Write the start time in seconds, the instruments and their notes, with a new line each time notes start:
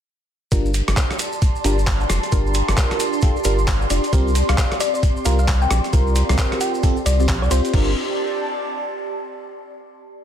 0.52 sub bass G1, fm electric piano D4 F4 G4 A#4, analog synth pad G4, ambient pad C6, kick, closed hi-hat, maracas
0.66 maracas
0.74 closed hi-hat, maracas
0.80 analog synth pad D5 A5
0.88 sub bass G1, cross-stick, closed hi-hat, maracas
0.97 kick, clap, closed hi-hat, maracas
1.11 cross-stick, closed hi-hat, maracas
1.19 closed hi-hat, maracas
1.32 maracas
1.42 kick, closed hi-hat, maracas
1.56 maracas
1.64 sub bass G1, fm electric piano D4 F4 G4 A#4, closed hi-hat, maracas
1.79 maracas
1.87 kick, clap, closed hi-hat, maracas
2.00 maracas
2.10 sub bass F1, cross-stick, closed hi-hat, maracas
2.23 closed hi-hat, maracas
2.32 sub bass G1, fm electric piano D4 F4 G4 A#4, kick, closed hi-hat, maracas
2.47 maracas
2.54 closed hi-hat, maracas
2.68 sub bass G1, cross-stick, closed hi-hat, maracas
2.77 kick, clap, closed hi-hat, maracas
2.91 cross-stick, closed hi-hat, maracas
3.00 closed hi-hat, maracas
3.13 maracas
3.22 fm electric piano D4 F4 G4 A4, kick, closed hi-hat, maracas
3.36 maracas
3.44 sub bass G1, fm electric piano D4 F4 G4 A#4, closed hi-hat, maracas
3.59 maracas
3.67 kick, clap, closed hi-hat, maracas
3.82 maracas
3.90 sub bass F1, fm electric piano D4 F4 G4 D5, closed hi-hat, maracas
4.04 closed hi-hat, maracas
4.13 sub bass C2, analog synth pad C4, fm electric piano C4 F4 G4 A#4, kick, closed hi-hat, maracas
4.28 maracas
4.35 closed hi-hat, maracas
4.49 sub bass C2, synth pluck F5, cross-stick, closed hi-hat, maracas
4.58 kick, clap, closed hi-hat, maracas
4.71 cross-stick, closed hi-hat, maracas
4.80 synth pluck D5, closed hi-hat, maracas
4.94 synth pluck D5, maracas
5.03 kick, closed hi-hat, maracas
5.17 maracas
5.25 sub bass C2, fm electric piano C4 F4 G4 A#4, synth pluck F5, closed hi-hat, maracas
5.39 synth pluck F5, maracas
5.48 kick, clap, closed hi-hat, maracas
5.62 synth pluck G5, maracas
5.71 sub bass A#1, cross-stick, closed hi-hat, maracas
5.84 closed hi-hat, maracas
5.93 sub bass C2, fm electric piano C4 F4 G4 A#4, kick, closed hi-hat, maracas
6.07 maracas
6.16 closed hi-hat, maracas
6.29 sub bass C2, cross-stick, closed hi-hat, maracas
6.38 kick, clap, closed hi-hat, maracas
6.52 cross-stick, closed hi-hat, maracas
6.61 synth pluck G5, closed hi-hat, maracas
6.74 maracas
6.83 fm electric piano C4 F4 G4 A4, kick, closed hi-hat, maracas
6.97 maracas
7.06 sub bass C2, synth pluck D5, closed hi-hat, maracas
7.20 fm electric piano C4 F4 G4 D5, maracas
7.28 sub bass A#1, kick, clap, closed hi-hat, maracas
7.42 sub bass C2, synth pluck D5, maracas
7.51 sub bass C2, fm electric piano C4 F4 G4 C5, synth pluck C5, closed hi-hat, maracas
7.65 closed hi-hat, maracas
7.73 sub bass G1, fm electric piano D4 F4 G4 A#4, analog synth pad G4, kick, crash
7.82 analog synth pad D5
7.89 analog synth pad A5